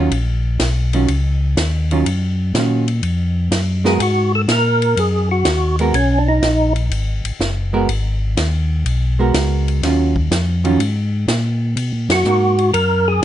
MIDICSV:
0, 0, Header, 1, 5, 480
1, 0, Start_track
1, 0, Key_signature, -6, "minor"
1, 0, Tempo, 485830
1, 110, Time_signature, 4, 2, 24, 8
1, 13085, End_track
2, 0, Start_track
2, 0, Title_t, "Tonewheel organ"
2, 0, Program_c, 0, 16
2, 3823, Note_on_c, 0, 68, 83
2, 3968, Note_off_c, 0, 68, 0
2, 3976, Note_on_c, 0, 66, 80
2, 4271, Note_off_c, 0, 66, 0
2, 4300, Note_on_c, 0, 69, 84
2, 4364, Note_off_c, 0, 69, 0
2, 4463, Note_on_c, 0, 70, 93
2, 4929, Note_on_c, 0, 68, 92
2, 4942, Note_off_c, 0, 70, 0
2, 5227, Note_off_c, 0, 68, 0
2, 5250, Note_on_c, 0, 66, 66
2, 5692, Note_off_c, 0, 66, 0
2, 5879, Note_on_c, 0, 61, 86
2, 6108, Note_on_c, 0, 62, 81
2, 6116, Note_off_c, 0, 61, 0
2, 6202, Note_off_c, 0, 62, 0
2, 6209, Note_on_c, 0, 63, 110
2, 6651, Note_off_c, 0, 63, 0
2, 11971, Note_on_c, 0, 66, 89
2, 12557, Note_off_c, 0, 66, 0
2, 12582, Note_on_c, 0, 70, 95
2, 12922, Note_on_c, 0, 68, 100
2, 12925, Note_off_c, 0, 70, 0
2, 13085, Note_off_c, 0, 68, 0
2, 13085, End_track
3, 0, Start_track
3, 0, Title_t, "Hollow-body jazz guitar"
3, 0, Program_c, 1, 26
3, 0, Note_on_c, 1, 54, 63
3, 0, Note_on_c, 1, 61, 57
3, 0, Note_on_c, 1, 65, 68
3, 99, Note_off_c, 1, 54, 0
3, 101, Note_off_c, 1, 61, 0
3, 101, Note_off_c, 1, 65, 0
3, 927, Note_on_c, 1, 51, 58
3, 931, Note_on_c, 1, 54, 60
3, 934, Note_on_c, 1, 61, 66
3, 938, Note_on_c, 1, 65, 56
3, 1059, Note_off_c, 1, 51, 0
3, 1061, Note_off_c, 1, 54, 0
3, 1062, Note_off_c, 1, 61, 0
3, 1064, Note_off_c, 1, 65, 0
3, 1893, Note_on_c, 1, 51, 64
3, 1896, Note_on_c, 1, 54, 58
3, 1898, Note_on_c, 1, 61, 63
3, 1900, Note_on_c, 1, 65, 67
3, 2022, Note_off_c, 1, 51, 0
3, 2024, Note_off_c, 1, 54, 0
3, 2025, Note_off_c, 1, 61, 0
3, 2026, Note_off_c, 1, 65, 0
3, 2529, Note_on_c, 1, 51, 49
3, 2532, Note_on_c, 1, 54, 51
3, 2536, Note_on_c, 1, 61, 53
3, 2539, Note_on_c, 1, 65, 57
3, 2816, Note_off_c, 1, 51, 0
3, 2817, Note_off_c, 1, 54, 0
3, 2820, Note_off_c, 1, 61, 0
3, 2821, Note_off_c, 1, 65, 0
3, 3798, Note_on_c, 1, 56, 63
3, 3803, Note_on_c, 1, 59, 60
3, 3806, Note_on_c, 1, 66, 72
3, 3812, Note_on_c, 1, 70, 72
3, 3935, Note_off_c, 1, 56, 0
3, 3938, Note_off_c, 1, 59, 0
3, 3939, Note_off_c, 1, 66, 0
3, 3943, Note_off_c, 1, 70, 0
3, 5727, Note_on_c, 1, 56, 61
3, 5733, Note_on_c, 1, 59, 65
3, 5740, Note_on_c, 1, 66, 69
3, 5741, Note_on_c, 1, 70, 79
3, 5860, Note_off_c, 1, 56, 0
3, 5864, Note_off_c, 1, 59, 0
3, 5867, Note_off_c, 1, 66, 0
3, 5868, Note_off_c, 1, 70, 0
3, 7638, Note_on_c, 1, 56, 66
3, 7644, Note_on_c, 1, 59, 65
3, 7644, Note_on_c, 1, 66, 67
3, 7647, Note_on_c, 1, 70, 67
3, 7776, Note_off_c, 1, 56, 0
3, 7779, Note_off_c, 1, 59, 0
3, 7779, Note_off_c, 1, 66, 0
3, 7780, Note_off_c, 1, 70, 0
3, 9080, Note_on_c, 1, 56, 58
3, 9086, Note_on_c, 1, 59, 60
3, 9090, Note_on_c, 1, 66, 65
3, 9095, Note_on_c, 1, 70, 67
3, 9681, Note_off_c, 1, 56, 0
3, 9684, Note_off_c, 1, 59, 0
3, 9686, Note_off_c, 1, 66, 0
3, 9689, Note_off_c, 1, 70, 0
3, 9713, Note_on_c, 1, 51, 49
3, 9720, Note_on_c, 1, 54, 58
3, 9724, Note_on_c, 1, 61, 61
3, 9725, Note_on_c, 1, 65, 63
3, 10008, Note_off_c, 1, 51, 0
3, 10011, Note_off_c, 1, 54, 0
3, 10013, Note_off_c, 1, 61, 0
3, 10014, Note_off_c, 1, 65, 0
3, 10515, Note_on_c, 1, 51, 66
3, 10521, Note_on_c, 1, 54, 68
3, 10525, Note_on_c, 1, 61, 75
3, 10526, Note_on_c, 1, 65, 74
3, 10654, Note_off_c, 1, 51, 0
3, 10657, Note_off_c, 1, 54, 0
3, 10659, Note_off_c, 1, 61, 0
3, 10659, Note_off_c, 1, 65, 0
3, 12115, Note_on_c, 1, 58, 66
3, 12117, Note_on_c, 1, 63, 55
3, 12121, Note_on_c, 1, 66, 60
3, 12408, Note_off_c, 1, 58, 0
3, 12409, Note_off_c, 1, 63, 0
3, 12411, Note_off_c, 1, 66, 0
3, 13085, End_track
4, 0, Start_track
4, 0, Title_t, "Tonewheel organ"
4, 0, Program_c, 2, 16
4, 106, Note_on_c, 2, 34, 80
4, 573, Note_off_c, 2, 34, 0
4, 589, Note_on_c, 2, 35, 81
4, 1055, Note_off_c, 2, 35, 0
4, 1070, Note_on_c, 2, 37, 88
4, 1536, Note_off_c, 2, 37, 0
4, 1551, Note_on_c, 2, 39, 88
4, 2017, Note_off_c, 2, 39, 0
4, 2031, Note_on_c, 2, 42, 79
4, 2497, Note_off_c, 2, 42, 0
4, 2511, Note_on_c, 2, 46, 83
4, 2977, Note_off_c, 2, 46, 0
4, 2987, Note_on_c, 2, 41, 83
4, 3455, Note_off_c, 2, 41, 0
4, 3464, Note_on_c, 2, 42, 83
4, 3933, Note_off_c, 2, 42, 0
4, 3949, Note_on_c, 2, 44, 86
4, 4416, Note_off_c, 2, 44, 0
4, 4423, Note_on_c, 2, 46, 85
4, 4893, Note_off_c, 2, 46, 0
4, 4907, Note_on_c, 2, 42, 81
4, 5375, Note_off_c, 2, 42, 0
4, 5384, Note_on_c, 2, 39, 84
4, 5854, Note_off_c, 2, 39, 0
4, 5863, Note_on_c, 2, 35, 83
4, 6333, Note_off_c, 2, 35, 0
4, 6345, Note_on_c, 2, 34, 85
4, 6814, Note_off_c, 2, 34, 0
4, 6816, Note_on_c, 2, 32, 84
4, 7129, Note_off_c, 2, 32, 0
4, 7151, Note_on_c, 2, 32, 43
4, 7229, Note_off_c, 2, 32, 0
4, 7307, Note_on_c, 2, 30, 81
4, 7775, Note_off_c, 2, 30, 0
4, 7789, Note_on_c, 2, 32, 87
4, 8256, Note_off_c, 2, 32, 0
4, 8269, Note_on_c, 2, 39, 90
4, 8736, Note_off_c, 2, 39, 0
4, 8742, Note_on_c, 2, 35, 84
4, 9212, Note_off_c, 2, 35, 0
4, 9223, Note_on_c, 2, 37, 83
4, 9693, Note_off_c, 2, 37, 0
4, 9698, Note_on_c, 2, 39, 83
4, 10170, Note_off_c, 2, 39, 0
4, 10179, Note_on_c, 2, 41, 87
4, 10651, Note_off_c, 2, 41, 0
4, 10655, Note_on_c, 2, 44, 82
4, 11128, Note_off_c, 2, 44, 0
4, 11142, Note_on_c, 2, 46, 82
4, 11611, Note_off_c, 2, 46, 0
4, 11618, Note_on_c, 2, 47, 83
4, 11779, Note_off_c, 2, 47, 0
4, 11783, Note_on_c, 2, 46, 58
4, 11941, Note_on_c, 2, 42, 67
4, 11947, Note_off_c, 2, 46, 0
4, 12094, Note_off_c, 2, 42, 0
4, 12102, Note_on_c, 2, 44, 83
4, 12572, Note_off_c, 2, 44, 0
4, 12585, Note_on_c, 2, 42, 79
4, 13053, Note_off_c, 2, 42, 0
4, 13085, End_track
5, 0, Start_track
5, 0, Title_t, "Drums"
5, 114, Note_on_c, 9, 51, 59
5, 213, Note_off_c, 9, 51, 0
5, 588, Note_on_c, 9, 38, 62
5, 589, Note_on_c, 9, 44, 47
5, 589, Note_on_c, 9, 51, 65
5, 687, Note_off_c, 9, 38, 0
5, 688, Note_off_c, 9, 44, 0
5, 688, Note_off_c, 9, 51, 0
5, 920, Note_on_c, 9, 51, 46
5, 1019, Note_off_c, 9, 51, 0
5, 1071, Note_on_c, 9, 51, 61
5, 1169, Note_off_c, 9, 51, 0
5, 1552, Note_on_c, 9, 38, 66
5, 1553, Note_on_c, 9, 44, 59
5, 1553, Note_on_c, 9, 51, 66
5, 1651, Note_off_c, 9, 38, 0
5, 1652, Note_off_c, 9, 44, 0
5, 1652, Note_off_c, 9, 51, 0
5, 1887, Note_on_c, 9, 51, 43
5, 1986, Note_off_c, 9, 51, 0
5, 2037, Note_on_c, 9, 51, 69
5, 2136, Note_off_c, 9, 51, 0
5, 2516, Note_on_c, 9, 38, 63
5, 2517, Note_on_c, 9, 44, 51
5, 2517, Note_on_c, 9, 51, 61
5, 2615, Note_off_c, 9, 38, 0
5, 2616, Note_off_c, 9, 44, 0
5, 2616, Note_off_c, 9, 51, 0
5, 2843, Note_on_c, 9, 51, 47
5, 2942, Note_off_c, 9, 51, 0
5, 2992, Note_on_c, 9, 51, 55
5, 3091, Note_off_c, 9, 51, 0
5, 3474, Note_on_c, 9, 38, 65
5, 3475, Note_on_c, 9, 44, 59
5, 3475, Note_on_c, 9, 51, 64
5, 3573, Note_off_c, 9, 38, 0
5, 3574, Note_off_c, 9, 44, 0
5, 3574, Note_off_c, 9, 51, 0
5, 3804, Note_on_c, 9, 38, 48
5, 3903, Note_off_c, 9, 38, 0
5, 3953, Note_on_c, 9, 51, 67
5, 4052, Note_off_c, 9, 51, 0
5, 4431, Note_on_c, 9, 38, 66
5, 4432, Note_on_c, 9, 44, 51
5, 4432, Note_on_c, 9, 51, 60
5, 4529, Note_off_c, 9, 38, 0
5, 4530, Note_off_c, 9, 44, 0
5, 4530, Note_off_c, 9, 51, 0
5, 4762, Note_on_c, 9, 51, 46
5, 4860, Note_off_c, 9, 51, 0
5, 4913, Note_on_c, 9, 51, 60
5, 5012, Note_off_c, 9, 51, 0
5, 5385, Note_on_c, 9, 38, 68
5, 5386, Note_on_c, 9, 44, 52
5, 5386, Note_on_c, 9, 51, 70
5, 5483, Note_off_c, 9, 38, 0
5, 5484, Note_off_c, 9, 44, 0
5, 5484, Note_off_c, 9, 51, 0
5, 5719, Note_on_c, 9, 51, 43
5, 5818, Note_off_c, 9, 51, 0
5, 5870, Note_on_c, 9, 51, 65
5, 5968, Note_off_c, 9, 51, 0
5, 6348, Note_on_c, 9, 38, 58
5, 6349, Note_on_c, 9, 44, 53
5, 6349, Note_on_c, 9, 51, 60
5, 6447, Note_off_c, 9, 38, 0
5, 6448, Note_off_c, 9, 44, 0
5, 6448, Note_off_c, 9, 51, 0
5, 6676, Note_on_c, 9, 51, 47
5, 6775, Note_off_c, 9, 51, 0
5, 6832, Note_on_c, 9, 51, 59
5, 6931, Note_off_c, 9, 51, 0
5, 7162, Note_on_c, 9, 51, 57
5, 7260, Note_off_c, 9, 51, 0
5, 7316, Note_on_c, 9, 38, 63
5, 7317, Note_on_c, 9, 44, 60
5, 7415, Note_off_c, 9, 38, 0
5, 7416, Note_off_c, 9, 44, 0
5, 7793, Note_on_c, 9, 51, 59
5, 7892, Note_off_c, 9, 51, 0
5, 8272, Note_on_c, 9, 38, 64
5, 8273, Note_on_c, 9, 44, 52
5, 8273, Note_on_c, 9, 51, 72
5, 8371, Note_off_c, 9, 38, 0
5, 8372, Note_off_c, 9, 44, 0
5, 8372, Note_off_c, 9, 51, 0
5, 8752, Note_on_c, 9, 51, 61
5, 8851, Note_off_c, 9, 51, 0
5, 9230, Note_on_c, 9, 38, 70
5, 9231, Note_on_c, 9, 44, 49
5, 9231, Note_on_c, 9, 51, 70
5, 9329, Note_off_c, 9, 38, 0
5, 9330, Note_off_c, 9, 44, 0
5, 9330, Note_off_c, 9, 51, 0
5, 9564, Note_on_c, 9, 51, 41
5, 9663, Note_off_c, 9, 51, 0
5, 9714, Note_on_c, 9, 38, 38
5, 9715, Note_on_c, 9, 51, 60
5, 9813, Note_off_c, 9, 38, 0
5, 9814, Note_off_c, 9, 51, 0
5, 10036, Note_on_c, 9, 36, 52
5, 10135, Note_off_c, 9, 36, 0
5, 10191, Note_on_c, 9, 38, 64
5, 10192, Note_on_c, 9, 44, 54
5, 10192, Note_on_c, 9, 51, 60
5, 10290, Note_off_c, 9, 38, 0
5, 10291, Note_off_c, 9, 44, 0
5, 10291, Note_off_c, 9, 51, 0
5, 10519, Note_on_c, 9, 51, 43
5, 10618, Note_off_c, 9, 51, 0
5, 10671, Note_on_c, 9, 51, 58
5, 10770, Note_off_c, 9, 51, 0
5, 11147, Note_on_c, 9, 38, 65
5, 11148, Note_on_c, 9, 44, 51
5, 11148, Note_on_c, 9, 51, 65
5, 11246, Note_off_c, 9, 38, 0
5, 11247, Note_off_c, 9, 44, 0
5, 11247, Note_off_c, 9, 51, 0
5, 11627, Note_on_c, 9, 51, 60
5, 11726, Note_off_c, 9, 51, 0
5, 11953, Note_on_c, 9, 38, 75
5, 11954, Note_on_c, 9, 51, 63
5, 12051, Note_off_c, 9, 38, 0
5, 12052, Note_off_c, 9, 51, 0
5, 12102, Note_on_c, 9, 44, 57
5, 12201, Note_off_c, 9, 44, 0
5, 12434, Note_on_c, 9, 51, 42
5, 12533, Note_off_c, 9, 51, 0
5, 12587, Note_on_c, 9, 51, 68
5, 12686, Note_off_c, 9, 51, 0
5, 13085, End_track
0, 0, End_of_file